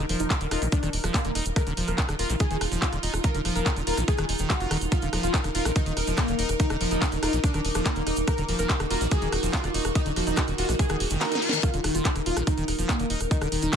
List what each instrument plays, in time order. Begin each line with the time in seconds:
Already playing: synth texture D#4 A#4, ambient pad D#4 A#4 A#5
0.09 analog synth bass D#1, acid bass F3, open hi-hat
0.20 analog synth bass D#1, analog synth lead D#4, closed hi-hat, shaker
0.30 acid bass D#4, kick, cross-stick, clap, closed hi-hat, shaker
0.41 analog synth bass D#1, acid bass D3, closed hi-hat, shaker
0.51 analog synth bass D#1, analog synth lead D#4, acid bass F4, cross-stick, open hi-hat
0.62 analog synth bass A#1, acid bass D3, closed hi-hat, shaker
0.72 acid bass D#3, analog synth lead D4, kick, closed hi-hat, shaker
0.83 analog synth bass D#1, acid bass D#3, cross-stick, closed hi-hat, shaker
0.93 analog synth bass D#1, open hi-hat
1.04 analog synth bass D#1, acid bass F3, cross-stick, closed hi-hat, shaker
1.14 analog synth lead A#3, acid bass D#4, kick, clap, closed hi-hat, shaker
1.24 analog synth bass D#1, acid bass D3, closed hi-hat, shaker
1.35 analog synth bass D#1, acid bass D#4, cross-stick, open hi-hat
1.45 analog synth bass D#1, closed hi-hat, shaker
1.56 acid bass D#3, synth texture F4, analog synth lead A#4, kick, cross-stick, closed hi-hat, shaker
1.67 analog synth bass D#1, acid bass D3, closed hi-hat, shaker
1.77 analog synth bass D#1, acid bass F3, open hi-hat
1.88 analog synth bass D#1, analog synth lead A#4, cross-stick, closed hi-hat, shaker
1.98 acid bass D#4, kick, clap, closed hi-hat, shaker
2.09 analog synth bass D#1, acid bass D3, cross-stick, closed hi-hat, shaker
2.19 analog synth bass D#1, acid bass F4, analog synth lead A#4, open hi-hat
2.30 analog synth bass A#1, acid bass D3, closed hi-hat, shaker
2.40 acid bass D#3, analog synth lead G#4, kick, cross-stick, closed hi-hat, shaker
2.51 analog synth bass D#1, acid bass D#3, closed hi-hat, shaker
2.61 analog synth bass D#1, cross-stick, open hi-hat
2.72 analog synth bass D#1, acid bass F3, closed hi-hat, shaker
2.82 acid bass D#4, analog synth lead F4, kick, clap, closed hi-hat, shaker
2.93 analog synth bass D#1, acid bass D3, cross-stick, closed hi-hat, shaker
3.03 analog synth bass D#1, acid bass D#4, open hi-hat
3.14 analog synth bass D#1, cross-stick, closed hi-hat, shaker
3.24 acid bass D#3, analog synth lead A#4, kick, closed hi-hat, shaker
3.35 analog synth bass D#1, acid bass D3, closed hi-hat, shaker
3.45 analog synth bass D#1, acid bass F3, cross-stick, open hi-hat
3.56 analog synth bass D#1, analog synth lead A#4, closed hi-hat, shaker
3.66 acid bass D#4, kick, cross-stick, clap, closed hi-hat, shaker
3.76 analog synth bass D#1, acid bass D3, closed hi-hat, shaker
3.87 analog synth bass D#1, acid bass F4, analog synth lead A#4, open hi-hat
3.97 analog synth bass A#1, acid bass D3, cross-stick, closed hi-hat, shaker
4.08 acid bass D#3, analog synth lead G#4, kick, closed hi-hat, shaker
4.17 analog synth bass D#1, acid bass D#3, cross-stick, closed hi-hat, shaker
4.29 analog synth bass D#1, open hi-hat
4.39 analog synth bass D#1, acid bass D#3, closed hi-hat, shaker
4.50 analog synth lead F#4, kick, cross-stick, clap, closed hi-hat, shaker
4.60 analog synth bass F1, acid bass F4, closed hi-hat, shaker
4.71 analog synth bass D#1, acid bass D#3, cross-stick, open hi-hat
4.81 analog synth bass D#1, closed hi-hat, shaker
4.92 acid bass D#3, analog synth lead F4, synth texture A#4, kick, cross-stick, closed hi-hat, shaker
5.02 analog synth bass D#1, acid bass D3, closed hi-hat, shaker
5.13 analog synth bass D#1, acid bass F3, cross-stick, open hi-hat
5.23 analog synth bass D#1, analog synth lead F4, closed hi-hat, shaker
5.34 acid bass D#4, kick, clap, closed hi-hat, shaker
5.43 analog synth bass D#1, acid bass D3, ambient pad D6, cross-stick, closed hi-hat, shaker
5.55 analog synth bass D#1, acid bass F4, analog synth lead F4, open hi-hat
5.65 analog synth bass A#1, acid bass D3, cross-stick, closed hi-hat, shaker
5.76 acid bass D#3, analog synth lead D#4, kick, closed hi-hat, shaker
5.86 analog synth bass D#1, acid bass D#3, closed hi-hat, shaker
5.97 analog synth bass D#1, cross-stick, open hi-hat
6.07 analog synth bass D#1, acid bass F3, closed hi-hat, shaker
6.17 analog synth lead A#3, acid bass D#4, kick, cross-stick, clap, closed hi-hat, shaker
6.28 analog synth bass D#1, acid bass D3, closed hi-hat, shaker
6.39 analog synth bass D#1, acid bass D#4, open hi-hat
6.49 analog synth bass D#1, cross-stick, closed hi-hat, shaker
6.60 acid bass D#3, analog synth lead D#4, kick, closed hi-hat, shaker
6.70 analog synth bass D#1, acid bass D3, cross-stick, closed hi-hat, shaker
6.81 analog synth bass D#1, acid bass F3, open hi-hat
6.91 analog synth bass D#1, analog synth lead D#4, closed hi-hat, shaker
7.02 acid bass D#4, kick, cross-stick, clap, closed hi-hat, shaker
7.12 analog synth bass D#1, acid bass D3, closed hi-hat, shaker
7.23 analog synth bass D#1, analog synth lead D#4, acid bass F4, cross-stick, open hi-hat
7.33 analog synth bass A#1, acid bass D3, closed hi-hat, shaker
7.44 acid bass D#3, analog synth lead D4, kick, closed hi-hat, shaker
7.54 analog synth bass D#1, acid bass D#3, cross-stick, closed hi-hat, shaker
7.65 analog synth bass D#1, open hi-hat
7.75 analog synth bass D#1, acid bass F3, cross-stick, closed hi-hat, shaker
7.85 analog synth lead A#3, acid bass D#4, kick, clap, closed hi-hat, shaker
7.96 analog synth bass D#1, acid bass D3, closed hi-hat, shaker
8.07 analog synth bass D#1, acid bass D#4, cross-stick, open hi-hat
8.16 analog synth bass D#1, closed hi-hat, shaker
8.28 acid bass D#3, synth texture F#4, analog synth lead A#4, kick, cross-stick, closed hi-hat, shaker
8.38 analog synth bass D#1, acid bass D3, closed hi-hat, shaker
8.48 analog synth bass D#1, acid bass F3, open hi-hat
8.59 analog synth bass D#1, analog synth lead A#4, cross-stick, closed hi-hat, shaker
8.69 acid bass D#4, kick, clap, closed hi-hat, shaker
8.80 analog synth bass D#1, acid bass D3, cross-stick, closed hi-hat, shaker
8.90 analog synth bass D#1, acid bass F4, analog synth lead A#4, open hi-hat
9.01 analog synth bass A#1, acid bass D3, closed hi-hat, shaker
9.11 acid bass D#3, analog synth lead G#4, kick, cross-stick, closed hi-hat, shaker
9.22 analog synth bass D#1, acid bass D#3, closed hi-hat, shaker
9.32 analog synth bass D#1, cross-stick, open hi-hat
9.43 analog synth bass D#1, acid bass F3, closed hi-hat, shaker
9.53 acid bass D#4, analog synth lead F4, kick, clap, closed hi-hat, shaker
9.64 analog synth bass D#1, acid bass D3, cross-stick, closed hi-hat, shaker
9.74 analog synth bass D#1, acid bass D#4, open hi-hat
9.85 analog synth bass D#1, cross-stick, closed hi-hat, shaker
9.95 acid bass D#3, analog synth lead D#4, kick, closed hi-hat, shaker
10.06 analog synth bass D#1, acid bass D3, closed hi-hat, shaker
10.16 analog synth bass D#1, acid bass F3, cross-stick, open hi-hat
10.27 analog synth bass D#1, analog synth lead D#4, closed hi-hat, shaker
10.36 acid bass D#4, kick, cross-stick, clap, closed hi-hat, shaker
10.48 analog synth bass D#1, acid bass D3, closed hi-hat, shaker
10.58 analog synth bass D#1, acid bass F4, analog synth lead F#4, open hi-hat
10.69 analog synth bass A#1, acid bass D3, cross-stick, closed hi-hat, shaker
10.79 acid bass D#3, analog synth lead G#4, kick, closed hi-hat, reverse cymbal, shaker
10.89 analog synth bass D#1, acid bass D#3, cross-stick, closed hi-hat, shaker
11.00 analog synth bass D#1, open hi-hat
11.10 analog synth bass F1, acid bass D#3, closed hi-hat, shaker
11.21 acid bass D#3, analog synth lead A#4, snare, clap, open hi-hat, shaker
11.32 acid bass D#4, snare, closed hi-hat, shaker
11.42 acid bass F4, open hi-hat
11.49 acid bass D#3, snare, closed hi-hat, shaker
11.63 acid bass D#3, synth texture D#4 A#4, analog synth lead F4, kick, cross-stick, closed hi-hat, shaker
11.74 analog synth bass D#1, acid bass D3, closed hi-hat, shaker
11.84 analog synth bass D#1, acid bass D#3, cross-stick, open hi-hat
11.95 analog synth bass D#1, analog synth lead F4, closed hi-hat, shaker
12.05 acid bass D#4, kick, clap, closed hi-hat, shaker
12.14 analog synth bass D#1, acid bass D3, ambient pad A#5, cross-stick, closed hi-hat, shaker
12.26 analog synth bass D#1, analog synth lead F4, acid bass F4, open hi-hat
12.37 analog synth bass A#1, acid bass D3, cross-stick, closed hi-hat, shaker
12.47 acid bass D#3, analog synth lead D#4, kick, closed hi-hat, shaker
12.58 analog synth bass D#1, acid bass D#3, closed hi-hat, shaker
12.68 analog synth bass D#1, cross-stick, open hi-hat
12.79 analog synth bass D#1, acid bass F3, closed hi-hat, shaker
12.89 analog synth lead A#3, acid bass D#4, kick, cross-stick, clap, closed hi-hat, shaker
12.99 analog synth bass D#1, acid bass D3, closed hi-hat, shaker
13.10 analog synth bass D#1, acid bass D#4, open hi-hat
13.20 analog synth bass D#1, cross-stick, closed hi-hat, shaker
13.31 acid bass D#3, analog synth lead D#4, kick, closed hi-hat, shaker
13.41 analog synth bass D#1, acid bass D3, cross-stick, closed hi-hat, shaker
13.52 analog synth bass D#1, acid bass D#3, open hi-hat
13.62 analog synth bass D#1, analog synth lead D#4, closed hi-hat, shaker
13.73 acid bass D#4, cross-stick, clap, closed hi-hat, shaker